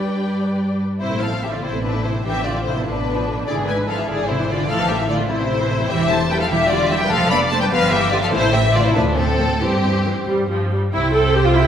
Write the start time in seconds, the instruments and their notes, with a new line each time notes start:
Already playing: double bass section G2, cello section G3, viola section D4 G4, violin section B4 D5 G5
1.00 double bass section A1, cello section C3, viola section C4 E4, violin section E4 C5
1.11 viola section A3 C4
1.21 cello section F3, viola section C4 E4, violin section A4 F5
1.32 viola section A3 C4
1.42 cello section E3, viola section C4 E4, violin section G4 E5
1.52 cello section D3, viola section A3 C4, violin section F4 D5
1.62 double bass section A1, cello section C3, viola section C4 E4, violin section E4 C5
1.73 viola section A3 C4
1.83 cello section B2, viola section C4 E4, violin section D4 B4
1.94 viola section A3 C4
2.04 cello section C3, viola section C4 E4, violin section E4 C5
2.14 viola section A3 C4
2.24 double bass section A1, viola section D3 D4, cello section E3, violin section G4 E5
2.34 viola section F3 B3
2.44 viola section D3 D4, cello section D3, violin section F4 D5
2.55 viola section F3 B3
2.64 cello section C3, viola section D3 D4, violin section E4 C5
2.76 viola section F3 B3
2.86 double bass section A1, cello section B2, viola section D3 D4, violin section D4 B4
2.96 viola section F3 B3
3.06 viola section D3 D4
3.16 viola section F3 B3
3.27 viola section D3 D4
3.37 viola section F3 B3
3.46 double bass section G#1, viola section D3 E4, cello section D3, violin section G#4 D5
3.57 viola section E3 D4
3.67 viola section D3 E4, cello section G#3, violin section B4 G#5
3.77 viola section E3 D4
3.88 viola section D3 E4, cello section F3, violin section A4 F5
3.98 viola section E3 D4, cello section E3, violin section G#4 E5
4.07 double bass section G#1, viola section D3 E4, cello section D3, violin section G#4 D5
4.19 viola section E3 D4
4.28 cello section C3, viola section D3 E4, violin section E4 C5
4.39 viola section E3 D4
4.49 viola section D3 E4, cello section D3, violin section F4 D5
4.60 viola section E3 D4
4.68 double bass section A1, cello section F3, viola section A3 E4, violin section A4 F5
4.79 viola section E3 C4
4.87 cello section E3, viola section A3 E4, violin section G4 E5
4.98 viola section E3 C4
5.08 cello section D3, viola section A3 E4, violin section F4 D5
5.21 viola section E3 C4
5.28 double bass section A1, cello section C3, viola section A3 E4, violin section E4 C5
5.41 viola section E3 C4
5.51 viola section A3 E4
5.60 viola section E3 C4
5.71 viola section A3 E4
5.81 viola section E3 C4
5.89 double bass section E1, cello section E3, viola section G3 E4, violin section G4 E5
6.09 viola section G3 E4, cello section A3, violin section C5 A5
6.29 cello section G3, viola section G3 E4, violin section B4 G5
6.38 cello section F3, violin section A4 F5
6.50 double bass section E1, cello section E3, viola section G3 E4, violin section G4 E5
6.70 cello section D3, viola section G3 E4, violin section F4 D5
6.91 cello section E3, viola section G3 E4, violin section G4 E5
7.00 cello section G3, violin section B4 G5
7.10 double bass section F1, cello section F3, viola section A3 D4, violin section A4 F5
7.31 viola section A3 D4, cello section B3, violin section D5 B5
7.50 viola section A3 D4, cello section A3, violin section C5 A5
7.61 cello section G3, violin section B4 G5
7.70 double bass section G1, cello section F3, viola section G3 B3, violin section B4 F5
7.90 cello section E3, viola section G3 B3, violin section G4 E5
8.11 cello section D3, viola section G3 B3, violin section F4 D5
8.22 cello section F3, violin section A4 F5
8.32 double bass section A1, cello section C3, viola section E3 A3, violin section E4 C5
8.53 cello section E3, viola section E3 A3, violin section G4 E5
8.74 cello section D3, viola section E3 A3, violin section F4 D5
8.84 cello section C3, violin section E4 C5
8.95 double bass section D2, cello section B2, viola section F3 A3, violin section D4 B4
9.17 cello section A2, viola section F3 A3, violin section C4 A4
9.39 viola section F3 A3
9.61 cello section G2, double bass section G2, viola section E3 C4, violin section C4 G4
9.84 viola section E3 C4
10.06 viola section E3 C4
10.27 double bass section G2, viola section G3
10.51 viola section F3
10.72 viola section G3
10.94 double bass section C2, cello section C3, viola section E4, violin section C5 G5
11.14 viola section A4
11.35 viola section G4
11.45 viola section F4
11.55 viola section E4